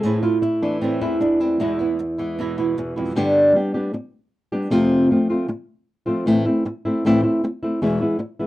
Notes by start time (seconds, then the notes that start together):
0.03 A2 E3 A3 C4 E4 G#4
0.23 A3 C4 E4 F4
0.42 E4, muted nylon-string guitar stroke
0.62 E3 A3 C4 D4 E4
0.81 A2 E3 A3 C4 E4
1.01 E2 A3 C4 E4
1.21 D4, muted nylon-string guitar stroke
1.40 A3 C4 E4
1.60 E2 B2 E3 G#3 B3 E4
1.79 E3 G#3 B3 E4
1.99 muted nylon-string guitar stroke
2.18 E3 G#3 B3 E4
2.39 E2 B2 E3 G#3 B3 E4
2.58 B2 E3 G#3 B3 E4
2.77 E2, muted nylon-string guitar stroke
2.96 F2 E3 G#3 B3 E4
3.15 G2 D3 G3 B3 D4 G4
3.55 G3 B3 D4 G4
3.74 G3 B3 D4 G4
3.93 muted nylon-string guitar stroke
4.52 G3 B3 D4 G4
4.70 F2 C3 F3 A3 C4 F4
5.10 F3 A3 C4 F4
5.30 F3 A3 C4 F4
5.48 muted nylon-string guitar stroke
6.06 F3 A3 C4 F4
6.26 A2 E3 A3 C4 E4
6.45 A3 C4 E4
6.65 muted nylon-string guitar stroke
6.85 A3 C4 E4
7.05 A2 E3 A3 C4 E4
7.23 A3 C4 E4
7.44 muted nylon-string guitar stroke
7.63 A3 C4 E4
7.82 E2 B2 E3 G#3 B3 E4
8.01 E3 G#3 B3 E4
8.19 muted nylon-string guitar stroke
8.39 E3 G#3 B3 E4